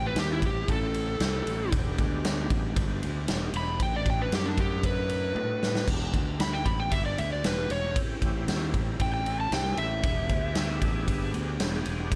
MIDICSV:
0, 0, Header, 1, 5, 480
1, 0, Start_track
1, 0, Tempo, 519931
1, 1592, Time_signature, 4, 2, 24, 8
1, 11221, End_track
2, 0, Start_track
2, 0, Title_t, "Electric slide guitar"
2, 0, Program_c, 0, 29
2, 62, Note_on_c, 0, 71, 92
2, 163, Note_off_c, 0, 71, 0
2, 178, Note_on_c, 0, 67, 94
2, 281, Note_off_c, 0, 67, 0
2, 303, Note_on_c, 0, 64, 86
2, 404, Note_off_c, 0, 64, 0
2, 424, Note_on_c, 0, 67, 88
2, 641, Note_off_c, 0, 67, 0
2, 667, Note_on_c, 0, 69, 105
2, 1581, Note_off_c, 0, 69, 0
2, 3295, Note_on_c, 0, 83, 108
2, 3517, Note_off_c, 0, 83, 0
2, 3531, Note_on_c, 0, 79, 99
2, 3638, Note_off_c, 0, 79, 0
2, 3659, Note_on_c, 0, 74, 84
2, 3762, Note_off_c, 0, 74, 0
2, 3785, Note_on_c, 0, 79, 95
2, 3885, Note_off_c, 0, 79, 0
2, 3893, Note_on_c, 0, 71, 99
2, 3999, Note_off_c, 0, 71, 0
2, 4014, Note_on_c, 0, 67, 81
2, 4116, Note_on_c, 0, 62, 91
2, 4120, Note_off_c, 0, 67, 0
2, 4230, Note_off_c, 0, 62, 0
2, 4247, Note_on_c, 0, 67, 93
2, 4472, Note_off_c, 0, 67, 0
2, 4483, Note_on_c, 0, 71, 116
2, 5408, Note_off_c, 0, 71, 0
2, 5918, Note_on_c, 0, 83, 89
2, 6030, Note_on_c, 0, 79, 84
2, 6031, Note_off_c, 0, 83, 0
2, 6144, Note_on_c, 0, 83, 79
2, 6147, Note_off_c, 0, 79, 0
2, 6264, Note_off_c, 0, 83, 0
2, 6275, Note_on_c, 0, 79, 94
2, 6387, Note_on_c, 0, 76, 89
2, 6389, Note_off_c, 0, 79, 0
2, 6505, Note_off_c, 0, 76, 0
2, 6515, Note_on_c, 0, 74, 83
2, 6629, Note_off_c, 0, 74, 0
2, 6635, Note_on_c, 0, 76, 85
2, 6750, Note_off_c, 0, 76, 0
2, 6764, Note_on_c, 0, 74, 95
2, 6874, Note_off_c, 0, 74, 0
2, 6882, Note_on_c, 0, 71, 88
2, 7109, Note_off_c, 0, 71, 0
2, 7118, Note_on_c, 0, 73, 99
2, 7347, Note_off_c, 0, 73, 0
2, 8323, Note_on_c, 0, 79, 107
2, 8423, Note_off_c, 0, 79, 0
2, 8434, Note_on_c, 0, 79, 90
2, 8665, Note_off_c, 0, 79, 0
2, 8682, Note_on_c, 0, 81, 101
2, 8792, Note_off_c, 0, 81, 0
2, 8795, Note_on_c, 0, 79, 94
2, 9025, Note_off_c, 0, 79, 0
2, 9030, Note_on_c, 0, 76, 113
2, 10433, Note_off_c, 0, 76, 0
2, 11221, End_track
3, 0, Start_track
3, 0, Title_t, "Tonewheel organ"
3, 0, Program_c, 1, 16
3, 0, Note_on_c, 1, 60, 70
3, 0, Note_on_c, 1, 61, 68
3, 0, Note_on_c, 1, 64, 70
3, 0, Note_on_c, 1, 67, 69
3, 1569, Note_off_c, 1, 60, 0
3, 1571, Note_off_c, 1, 61, 0
3, 1574, Note_off_c, 1, 67, 0
3, 1575, Note_off_c, 1, 64, 0
3, 1582, Note_on_c, 1, 59, 72
3, 1582, Note_on_c, 1, 62, 74
3, 1584, Note_on_c, 1, 56, 73
3, 1591, Note_on_c, 1, 67, 71
3, 3487, Note_off_c, 1, 62, 0
3, 3488, Note_off_c, 1, 59, 0
3, 3489, Note_off_c, 1, 56, 0
3, 3492, Note_off_c, 1, 67, 0
3, 3505, Note_on_c, 1, 63, 72
3, 3508, Note_on_c, 1, 57, 77
3, 3515, Note_on_c, 1, 62, 70
3, 3515, Note_on_c, 1, 66, 72
3, 5409, Note_off_c, 1, 63, 0
3, 5410, Note_off_c, 1, 57, 0
3, 5413, Note_off_c, 1, 62, 0
3, 5413, Note_off_c, 1, 66, 0
3, 5429, Note_on_c, 1, 59, 65
3, 5432, Note_on_c, 1, 67, 65
3, 5435, Note_on_c, 1, 62, 65
3, 5440, Note_on_c, 1, 56, 69
3, 7330, Note_off_c, 1, 59, 0
3, 7332, Note_off_c, 1, 67, 0
3, 7333, Note_off_c, 1, 62, 0
3, 7336, Note_off_c, 1, 56, 0
3, 7357, Note_on_c, 1, 64, 66
3, 7359, Note_on_c, 1, 61, 65
3, 7361, Note_on_c, 1, 60, 70
3, 7367, Note_on_c, 1, 67, 65
3, 9254, Note_off_c, 1, 64, 0
3, 9254, Note_off_c, 1, 67, 0
3, 9255, Note_off_c, 1, 61, 0
3, 9256, Note_off_c, 1, 60, 0
3, 9260, Note_on_c, 1, 62, 67
3, 9262, Note_on_c, 1, 59, 68
3, 9262, Note_on_c, 1, 68, 71
3, 9265, Note_on_c, 1, 67, 67
3, 11221, Note_off_c, 1, 59, 0
3, 11221, Note_off_c, 1, 62, 0
3, 11221, Note_off_c, 1, 67, 0
3, 11221, Note_off_c, 1, 68, 0
3, 11221, End_track
4, 0, Start_track
4, 0, Title_t, "Fingered electric bass"
4, 0, Program_c, 2, 33
4, 0, Note_on_c, 2, 33, 80
4, 132, Note_off_c, 2, 33, 0
4, 144, Note_on_c, 2, 39, 95
4, 371, Note_off_c, 2, 39, 0
4, 389, Note_on_c, 2, 33, 70
4, 613, Note_off_c, 2, 33, 0
4, 630, Note_on_c, 2, 33, 94
4, 1077, Note_off_c, 2, 33, 0
4, 1106, Note_on_c, 2, 36, 84
4, 1332, Note_off_c, 2, 36, 0
4, 1348, Note_on_c, 2, 33, 76
4, 1573, Note_off_c, 2, 33, 0
4, 1593, Note_on_c, 2, 28, 101
4, 1815, Note_off_c, 2, 28, 0
4, 1827, Note_on_c, 2, 38, 94
4, 2276, Note_off_c, 2, 38, 0
4, 2310, Note_on_c, 2, 33, 86
4, 2534, Note_off_c, 2, 33, 0
4, 2549, Note_on_c, 2, 31, 96
4, 2774, Note_off_c, 2, 31, 0
4, 2795, Note_on_c, 2, 38, 90
4, 3017, Note_off_c, 2, 38, 0
4, 3032, Note_on_c, 2, 28, 77
4, 3255, Note_off_c, 2, 28, 0
4, 3262, Note_on_c, 2, 28, 72
4, 3490, Note_off_c, 2, 28, 0
4, 3504, Note_on_c, 2, 33, 92
4, 3954, Note_off_c, 2, 33, 0
4, 3983, Note_on_c, 2, 42, 91
4, 4910, Note_off_c, 2, 42, 0
4, 4940, Note_on_c, 2, 45, 88
4, 5391, Note_off_c, 2, 45, 0
4, 5424, Note_on_c, 2, 28, 89
4, 5651, Note_off_c, 2, 28, 0
4, 5663, Note_on_c, 2, 38, 89
4, 6113, Note_off_c, 2, 38, 0
4, 6144, Note_on_c, 2, 33, 84
4, 6371, Note_off_c, 2, 33, 0
4, 6386, Note_on_c, 2, 31, 87
4, 6611, Note_off_c, 2, 31, 0
4, 6628, Note_on_c, 2, 38, 88
4, 6852, Note_off_c, 2, 38, 0
4, 6874, Note_on_c, 2, 28, 71
4, 7095, Note_off_c, 2, 28, 0
4, 7109, Note_on_c, 2, 28, 70
4, 7333, Note_off_c, 2, 28, 0
4, 7585, Note_on_c, 2, 33, 87
4, 7810, Note_off_c, 2, 33, 0
4, 7826, Note_on_c, 2, 39, 89
4, 8051, Note_off_c, 2, 39, 0
4, 8067, Note_on_c, 2, 33, 71
4, 8292, Note_off_c, 2, 33, 0
4, 8306, Note_on_c, 2, 33, 92
4, 8754, Note_off_c, 2, 33, 0
4, 8781, Note_on_c, 2, 36, 90
4, 9008, Note_off_c, 2, 36, 0
4, 9024, Note_on_c, 2, 33, 73
4, 9250, Note_off_c, 2, 33, 0
4, 9262, Note_on_c, 2, 28, 96
4, 9489, Note_off_c, 2, 28, 0
4, 9502, Note_on_c, 2, 38, 100
4, 9952, Note_off_c, 2, 38, 0
4, 9984, Note_on_c, 2, 33, 84
4, 10210, Note_off_c, 2, 33, 0
4, 10225, Note_on_c, 2, 31, 91
4, 10450, Note_off_c, 2, 31, 0
4, 10460, Note_on_c, 2, 38, 91
4, 10688, Note_off_c, 2, 38, 0
4, 10707, Note_on_c, 2, 28, 79
4, 10931, Note_off_c, 2, 28, 0
4, 10951, Note_on_c, 2, 28, 74
4, 11174, Note_off_c, 2, 28, 0
4, 11221, End_track
5, 0, Start_track
5, 0, Title_t, "Drums"
5, 146, Note_on_c, 9, 51, 86
5, 152, Note_on_c, 9, 38, 112
5, 239, Note_off_c, 9, 51, 0
5, 244, Note_off_c, 9, 38, 0
5, 389, Note_on_c, 9, 36, 81
5, 393, Note_on_c, 9, 51, 65
5, 482, Note_off_c, 9, 36, 0
5, 486, Note_off_c, 9, 51, 0
5, 631, Note_on_c, 9, 36, 89
5, 632, Note_on_c, 9, 51, 78
5, 723, Note_off_c, 9, 36, 0
5, 725, Note_off_c, 9, 51, 0
5, 870, Note_on_c, 9, 51, 62
5, 962, Note_off_c, 9, 51, 0
5, 1109, Note_on_c, 9, 51, 84
5, 1115, Note_on_c, 9, 38, 101
5, 1202, Note_off_c, 9, 51, 0
5, 1207, Note_off_c, 9, 38, 0
5, 1355, Note_on_c, 9, 51, 66
5, 1447, Note_off_c, 9, 51, 0
5, 1590, Note_on_c, 9, 51, 86
5, 1592, Note_on_c, 9, 36, 99
5, 1683, Note_off_c, 9, 51, 0
5, 1685, Note_off_c, 9, 36, 0
5, 1831, Note_on_c, 9, 51, 67
5, 1832, Note_on_c, 9, 36, 85
5, 1924, Note_off_c, 9, 51, 0
5, 1925, Note_off_c, 9, 36, 0
5, 2072, Note_on_c, 9, 51, 87
5, 2078, Note_on_c, 9, 38, 108
5, 2165, Note_off_c, 9, 51, 0
5, 2170, Note_off_c, 9, 38, 0
5, 2309, Note_on_c, 9, 51, 64
5, 2312, Note_on_c, 9, 36, 87
5, 2401, Note_off_c, 9, 51, 0
5, 2404, Note_off_c, 9, 36, 0
5, 2552, Note_on_c, 9, 36, 89
5, 2552, Note_on_c, 9, 51, 86
5, 2644, Note_off_c, 9, 36, 0
5, 2644, Note_off_c, 9, 51, 0
5, 2793, Note_on_c, 9, 51, 67
5, 2886, Note_off_c, 9, 51, 0
5, 3027, Note_on_c, 9, 51, 92
5, 3033, Note_on_c, 9, 38, 102
5, 3119, Note_off_c, 9, 51, 0
5, 3125, Note_off_c, 9, 38, 0
5, 3264, Note_on_c, 9, 51, 72
5, 3356, Note_off_c, 9, 51, 0
5, 3505, Note_on_c, 9, 51, 94
5, 3507, Note_on_c, 9, 36, 101
5, 3597, Note_off_c, 9, 51, 0
5, 3600, Note_off_c, 9, 36, 0
5, 3746, Note_on_c, 9, 36, 86
5, 3747, Note_on_c, 9, 51, 67
5, 3838, Note_off_c, 9, 36, 0
5, 3839, Note_off_c, 9, 51, 0
5, 3990, Note_on_c, 9, 51, 91
5, 3995, Note_on_c, 9, 38, 114
5, 4082, Note_off_c, 9, 51, 0
5, 4087, Note_off_c, 9, 38, 0
5, 4224, Note_on_c, 9, 36, 76
5, 4224, Note_on_c, 9, 51, 70
5, 4317, Note_off_c, 9, 36, 0
5, 4317, Note_off_c, 9, 51, 0
5, 4464, Note_on_c, 9, 36, 90
5, 4465, Note_on_c, 9, 51, 87
5, 4556, Note_off_c, 9, 36, 0
5, 4557, Note_off_c, 9, 51, 0
5, 4703, Note_on_c, 9, 51, 62
5, 4795, Note_off_c, 9, 51, 0
5, 4947, Note_on_c, 9, 48, 58
5, 5040, Note_off_c, 9, 48, 0
5, 5196, Note_on_c, 9, 38, 85
5, 5288, Note_off_c, 9, 38, 0
5, 5312, Note_on_c, 9, 38, 88
5, 5404, Note_off_c, 9, 38, 0
5, 5425, Note_on_c, 9, 36, 95
5, 5428, Note_on_c, 9, 49, 98
5, 5517, Note_off_c, 9, 36, 0
5, 5521, Note_off_c, 9, 49, 0
5, 5665, Note_on_c, 9, 36, 82
5, 5667, Note_on_c, 9, 51, 67
5, 5757, Note_off_c, 9, 36, 0
5, 5759, Note_off_c, 9, 51, 0
5, 5906, Note_on_c, 9, 51, 89
5, 5911, Note_on_c, 9, 38, 110
5, 5998, Note_off_c, 9, 51, 0
5, 6003, Note_off_c, 9, 38, 0
5, 6145, Note_on_c, 9, 36, 80
5, 6146, Note_on_c, 9, 51, 68
5, 6238, Note_off_c, 9, 36, 0
5, 6238, Note_off_c, 9, 51, 0
5, 6383, Note_on_c, 9, 51, 96
5, 6386, Note_on_c, 9, 36, 82
5, 6475, Note_off_c, 9, 51, 0
5, 6478, Note_off_c, 9, 36, 0
5, 6629, Note_on_c, 9, 51, 71
5, 6722, Note_off_c, 9, 51, 0
5, 6870, Note_on_c, 9, 51, 92
5, 6875, Note_on_c, 9, 38, 104
5, 6962, Note_off_c, 9, 51, 0
5, 6967, Note_off_c, 9, 38, 0
5, 7107, Note_on_c, 9, 51, 70
5, 7200, Note_off_c, 9, 51, 0
5, 7349, Note_on_c, 9, 36, 109
5, 7349, Note_on_c, 9, 51, 90
5, 7441, Note_off_c, 9, 36, 0
5, 7441, Note_off_c, 9, 51, 0
5, 7588, Note_on_c, 9, 36, 84
5, 7588, Note_on_c, 9, 51, 70
5, 7680, Note_off_c, 9, 36, 0
5, 7681, Note_off_c, 9, 51, 0
5, 7828, Note_on_c, 9, 51, 89
5, 7834, Note_on_c, 9, 38, 99
5, 7921, Note_off_c, 9, 51, 0
5, 7926, Note_off_c, 9, 38, 0
5, 8068, Note_on_c, 9, 36, 78
5, 8068, Note_on_c, 9, 51, 69
5, 8160, Note_off_c, 9, 36, 0
5, 8161, Note_off_c, 9, 51, 0
5, 8307, Note_on_c, 9, 36, 79
5, 8307, Note_on_c, 9, 51, 82
5, 8399, Note_off_c, 9, 36, 0
5, 8399, Note_off_c, 9, 51, 0
5, 8549, Note_on_c, 9, 51, 60
5, 8641, Note_off_c, 9, 51, 0
5, 8789, Note_on_c, 9, 51, 81
5, 8794, Note_on_c, 9, 38, 107
5, 8881, Note_off_c, 9, 51, 0
5, 8887, Note_off_c, 9, 38, 0
5, 8910, Note_on_c, 9, 38, 31
5, 9003, Note_off_c, 9, 38, 0
5, 9022, Note_on_c, 9, 51, 66
5, 9114, Note_off_c, 9, 51, 0
5, 9262, Note_on_c, 9, 51, 90
5, 9266, Note_on_c, 9, 36, 110
5, 9354, Note_off_c, 9, 51, 0
5, 9358, Note_off_c, 9, 36, 0
5, 9501, Note_on_c, 9, 51, 67
5, 9505, Note_on_c, 9, 36, 84
5, 9594, Note_off_c, 9, 51, 0
5, 9597, Note_off_c, 9, 36, 0
5, 9741, Note_on_c, 9, 51, 91
5, 9747, Note_on_c, 9, 38, 110
5, 9834, Note_off_c, 9, 51, 0
5, 9839, Note_off_c, 9, 38, 0
5, 9985, Note_on_c, 9, 51, 66
5, 9986, Note_on_c, 9, 36, 79
5, 10077, Note_off_c, 9, 51, 0
5, 10079, Note_off_c, 9, 36, 0
5, 10227, Note_on_c, 9, 36, 81
5, 10228, Note_on_c, 9, 51, 91
5, 10320, Note_off_c, 9, 36, 0
5, 10320, Note_off_c, 9, 51, 0
5, 10468, Note_on_c, 9, 51, 67
5, 10560, Note_off_c, 9, 51, 0
5, 10706, Note_on_c, 9, 51, 95
5, 10712, Note_on_c, 9, 38, 104
5, 10798, Note_off_c, 9, 51, 0
5, 10804, Note_off_c, 9, 38, 0
5, 10832, Note_on_c, 9, 38, 31
5, 10925, Note_off_c, 9, 38, 0
5, 10944, Note_on_c, 9, 51, 74
5, 11037, Note_off_c, 9, 51, 0
5, 11186, Note_on_c, 9, 36, 104
5, 11187, Note_on_c, 9, 51, 97
5, 11221, Note_off_c, 9, 36, 0
5, 11221, Note_off_c, 9, 51, 0
5, 11221, End_track
0, 0, End_of_file